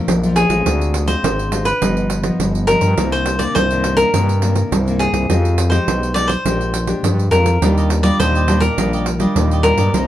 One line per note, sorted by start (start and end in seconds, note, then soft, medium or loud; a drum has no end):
0.00 0.17 F3 medium
0.00 0.17 A3 medium
0.00 0.18 D4 medium
0.00 0.32 A#4 medium
0.08 0.45 A#1 medium
0.08 0.63 F2 medium
0.08 pandeiro medium
0.23 0.47 F3 medium
0.23 0.48 A3 medium
0.23 0.48 D4 medium
0.23 pandeiro soft
0.36 1.11 G#4 medium
0.36 pandeiro medium
0.50 0.63 A1 medium
0.50 1.04 G#3 medium
0.50 1.04 C4 medium
0.50 1.04 F4 medium
0.50 pandeiro medium
0.66 1.15 D2 loud
0.66 1.21 D3 medium
0.66 pandeiro medium
0.81 pandeiro soft
0.94 pandeiro medium
1.07 1.47 G#3 medium
1.07 1.47 C4 medium
1.07 1.48 F4 medium
1.07 1.68 C5 medium
1.07 pandeiro medium
1.24 1.73 G#1 medium
1.24 1.79 D3 medium
1.24 pandeiro medium
1.39 pandeiro soft
1.52 1.70 G#3 medium
1.52 1.70 C4 medium
1.52 1.70 F4 medium
1.52 pandeiro medium
1.65 2.64 B4 medium
1.65 pandeiro medium
1.82 2.31 G1 medium
1.82 2.37 G2 medium
1.82 2.21 F3 medium
1.82 2.21 B3 medium
1.82 2.21 D#4 medium
1.82 pandeiro medium
1.97 pandeiro soft
2.10 pandeiro medium
2.23 2.64 F3 medium
2.23 2.64 B3 medium
2.23 2.64 D#4 medium
2.23 pandeiro medium
2.39 2.77 G1 medium
2.39 2.95 G2 medium
2.39 pandeiro medium
2.55 pandeiro soft
2.67 2.93 F3 medium
2.67 2.93 B3 medium
2.67 2.93 D#4 medium
2.67 3.08 A#4 medium
2.67 pandeiro medium
2.81 2.95 G2 loud
2.81 pandeiro medium
2.97 3.47 C2 medium
2.97 3.53 C3 medium
2.97 3.37 D#3 medium
2.97 3.37 A#3 medium
2.97 3.37 D4 medium
2.97 pandeiro medium
3.12 3.42 C5 medium
3.12 pandeiro soft
3.26 pandeiro medium
3.39 3.65 D#3 medium
3.39 3.65 A#3 medium
3.39 3.65 D4 medium
3.39 3.54 D5 medium
3.39 pandeiro medium
3.55 4.05 C2 medium
3.55 4.11 G2 medium
3.55 3.96 C5 medium
3.55 pandeiro medium
3.71 3.95 D#3 medium
3.71 3.95 A#3 medium
3.71 3.96 D4 medium
3.71 pandeiro soft
3.84 pandeiro medium
3.97 4.08 D#3 medium
3.97 4.08 A#3 medium
3.97 4.09 D4 medium
3.97 4.95 A#4 medium
3.97 pandeiro medium
4.14 4.63 G2 medium
4.14 4.69 C3 medium
4.14 4.31 D#3 medium
4.14 4.31 A#3 medium
4.14 4.31 D4 medium
4.14 pandeiro medium
4.29 pandeiro soft
4.42 4.70 D#3 medium
4.42 4.70 A#3 medium
4.42 4.70 D4 medium
4.42 pandeiro medium
4.56 pandeiro medium
4.71 5.09 C2 medium
4.71 5.27 G2 medium
4.71 pandeiro medium
4.87 5.25 D#3 medium
4.87 5.25 A#3 medium
4.87 5.26 D4 medium
4.87 pandeiro soft
4.99 5.75 G#4 medium
4.99 pandeiro medium
5.13 5.26 C2 loud
5.13 pandeiro medium
5.30 5.79 F2 loud
5.30 5.85 F3 medium
5.30 5.57 G#3 medium
5.30 5.57 D#4 medium
5.30 5.57 G4 medium
5.30 pandeiro medium
5.45 pandeiro soft
5.58 pandeiro medium
5.70 6.11 G#3 medium
5.70 6.11 D#4 medium
5.70 6.11 G4 medium
5.70 6.12 C5 medium
5.70 pandeiro medium
5.88 6.37 B1 medium
5.88 pandeiro medium
6.03 pandeiro soft
6.14 6.33 G#3 medium
6.14 6.33 D#4 medium
6.14 6.34 G4 medium
6.14 6.29 D5 medium
6.14 pandeiro medium
6.28 7.27 C5 medium
6.28 pandeiro medium
6.45 6.95 A#1 medium
6.45 7.01 A#2 medium
6.45 6.73 G#3 medium
6.45 6.73 D4 medium
6.45 6.73 G4 medium
6.45 pandeiro medium
6.61 pandeiro soft
6.74 pandeiro medium
6.87 7.27 G#3 medium
6.87 7.27 D4 medium
6.87 7.27 G4 medium
6.87 pandeiro medium
7.03 7.59 F2 medium
7.03 7.29 G2 medium
7.03 pandeiro medium
7.19 pandeiro soft
7.31 7.58 F2 medium
7.31 7.49 G#3 medium
7.31 7.49 D4 soft
7.31 7.50 G4 medium
7.31 8.07 A#4 medium
7.31 pandeiro medium
7.46 pandeiro medium
7.61 8.11 D#2 medium
7.61 8.17 D#3 medium
7.61 8.01 G3 medium
7.61 7.75 D4 soft
7.61 8.01 D4 medium
7.61 8.01 F4 medium
7.61 7.75 G4 soft
7.61 7.76 D5 medium
7.61 7.75 D#5 soft
7.61 pandeiro medium
7.77 7.89 G4 medium
7.77 7.89 D5 medium
7.77 7.89 D#5 medium
7.77 pandeiro soft
7.90 muted cavaquinho stroke soft
7.90 pandeiro medium
8.03 8.43 G3 medium
8.03 8.43 D4 medium
8.03 8.43 F4 medium
8.03 8.18 G4 medium
8.03 8.17 D5 medium
8.03 8.18 D5 medium
8.03 8.18 D#5 medium
8.03 pandeiro medium
8.20 8.69 D#2 medium
8.20 8.75 A#2 medium
8.20 8.33 D4 soft
8.20 8.33 G4 medium
8.20 8.60 C5 medium
8.20 8.34 D5 medium
8.20 8.34 D#5 medium
8.20 pandeiro medium
8.35 8.47 G4 soft
8.35 8.48 D5 medium
8.35 8.47 D#5 medium
8.35 pandeiro soft
8.47 8.65 G3 medium
8.47 8.76 D4 medium
8.47 8.65 D4 medium
8.47 8.66 F4 medium
8.47 8.76 G4 medium
8.47 8.77 D5 medium
8.47 8.76 D#5 medium
8.47 pandeiro medium
8.60 9.62 A#4 medium
8.60 pandeiro medium
8.78 9.27 A#1 loud
8.78 9.33 D#3 medium
8.78 9.17 G3 medium
8.78 8.91 D4 soft
8.78 9.17 D4 medium
8.78 9.17 F4 medium
8.78 8.91 G4 medium
8.78 8.92 D5 medium
8.78 8.92 D#5 soft
8.78 pandeiro medium
8.93 9.05 G4 medium
8.93 9.06 D5 medium
8.93 9.06 D#5 medium
8.93 pandeiro soft
9.06 muted cavaquinho stroke soft
9.06 pandeiro medium
9.19 9.59 G3 medium
9.19 9.59 D4 medium
9.19 9.60 F4 medium
9.19 9.49 G4 medium
9.19 9.48 D5 medium
9.19 9.49 D#5 medium
9.19 pandeiro medium
9.36 9.73 D#2 loud
9.36 9.91 A#2 medium
9.36 pandeiro medium
9.51 9.64 G4 medium
9.51 9.64 D5 medium
9.51 9.64 D#5 medium
9.51 pandeiro soft
9.63 9.81 G3 soft
9.63 9.81 D4 medium
9.63 9.78 D4 soft
9.63 9.81 F4 medium
9.63 9.78 G4 medium
9.63 10.07 A#4 medium
9.63 9.76 D5 medium
9.63 9.77 D#5 medium
9.63 pandeiro medium
9.78 9.91 G2 medium
9.78 9.92 G4 medium
9.78 9.92 D5 medium
9.78 9.92 D#5 medium
9.78 pandeiro medium
9.94 10.07 C2 loud
9.94 10.07 C3 medium
9.94 10.07 D#3 medium
9.94 10.07 A#3 medium
9.94 10.07 D4 medium
9.94 10.07 D#4 soft
9.94 10.07 A#4 medium
9.94 10.07 C5 soft
9.94 10.07 D#5 soft
9.94 pandeiro medium